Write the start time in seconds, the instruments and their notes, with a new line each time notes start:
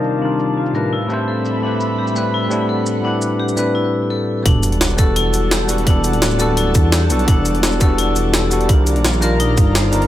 Already playing: tine electric piano C3 D#3 G3 D4 D#4 F4 A#4 C5 D5, analog synth pad G3 C4 D5 F5 A5, vibraphone D4 D#4 F4 G4 A#4
0.04 shaker
0.19 tine electric piano C3 D#3 G3 D4, vibraphone D4
0.24 tine electric piano F4 A#4
0.40 shaker
0.57 vibraphone F4
0.66 shaker
0.73 tine electric piano A2 G3 C4 D4 E4 B4, vibraphone A#4, shaker
0.93 analog synth pad A3 C4 E5 B5, vibraphone E4
1.07 tine electric piano A2 G3 C4 D4, shaker
1.12 tine electric piano E4 C5
1.28 vibraphone A4
1.45 shaker
1.60 tine electric piano A2 G3 C4, vibraphone D4
1.64 tine electric piano D4 E4 B4
1.81 shaker
1.99 vibraphone G4
2.08 shaker
2.14 tine electric piano A2 G3 C4 D4 E4 B4, vibraphone B4, shaker
2.34 vibraphone E4, analog synth pad F#5
2.48 tine electric piano A2 G3 C4 D4, shaker
2.53 tine electric piano E4
2.69 vibraphone A4
2.87 shaker
3.01 tine electric piano A2 G3 C4 D4, vibraphone D4
3.06 tine electric piano E4 B4
3.22 shaker
3.40 vibraphone G4
3.49 shaker
3.55 tine electric piano A2 G3 C4 D4 E4 B4, vibraphone B4, shaker
3.75 vibraphone E4
4.10 vibraphone A4
4.42 detuned saw bass E1, tine electric piano G3 B3 D4, vibraphone D4, analog synth pad D5 F#5 A5, kick, closed hi-hat, sub drop
4.47 tine electric piano F#4 A4
4.63 closed hi-hat, shaker
4.72 closed hi-hat
4.81 vibraphone F#4, snare, closed hi-hat
4.90 shaker
4.97 tine electric piano G3 B3 D4 F#4 A4, vibraphone A4, kick, closed hi-hat, shaker
5.16 vibraphone E4, closed hi-hat
5.34 closed hi-hat, shaker
5.51 vibraphone G4, snare, closed hi-hat
5.67 tine electric piano G3 B3 D4 F#4 A4, closed hi-hat, shaker
5.78 closed hi-hat
5.84 detuned saw bass E1, tine electric piano G3 B3 D4, vibraphone D4, kick, closed hi-hat
5.89 tine electric piano A4 F#5
6.04 closed hi-hat, shaker
6.13 detuned saw bass D1, closed hi-hat
6.22 vibraphone F#4, snare, closed hi-hat
6.31 shaker
6.38 tine electric piano G3 B3 D4 F#4 A4, vibraphone A4, closed hi-hat, shaker
6.57 vibraphone E4, closed hi-hat
6.75 detuned saw bass E2, kick, closed hi-hat, shaker
6.92 vibraphone G4, snare, closed hi-hat
7.09 detuned saw bass B1, tine electric piano G3 B3 D4 F#4 A4, closed hi-hat, shaker
7.19 closed hi-hat
7.25 detuned saw bass E1, tine electric piano G3 B3 D4, vibraphone D4, kick, closed hi-hat
7.30 tine electric piano A4 F#5
7.46 closed hi-hat, shaker
7.55 closed hi-hat
7.63 vibraphone F#4, snare, closed hi-hat
7.72 shaker
7.79 tine electric piano G3 B3 D4 F#4 A4, vibraphone A4, kick, closed hi-hat, shaker
7.98 vibraphone E4, closed hi-hat
8.16 closed hi-hat, shaker
8.34 vibraphone G4, snare, closed hi-hat
8.50 tine electric piano G3 B3 D4 F#4 A4, closed hi-hat, shaker
8.61 closed hi-hat
8.66 detuned saw bass C2, tine electric piano D#3 G3 D4, vibraphone D4, analog synth pad F5 A#5, kick, closed hi-hat
8.71 tine electric piano F4 A#4
8.87 closed hi-hat, shaker
8.96 detuned saw bass A#1, closed hi-hat
9.05 vibraphone F4, snare, closed hi-hat
9.14 shaker
9.20 tine electric piano G3 D4 D#4 F4 A#4, vibraphone A#4, closed hi-hat, shaker
9.40 vibraphone D#4, closed hi-hat
9.58 detuned saw bass G1, kick, closed hi-hat, shaker
9.75 vibraphone C5, snare, closed hi-hat
9.91 detuned saw bass G1, tine electric piano G3 D4 D#4 F4 A#4, closed hi-hat, shaker
10.02 closed hi-hat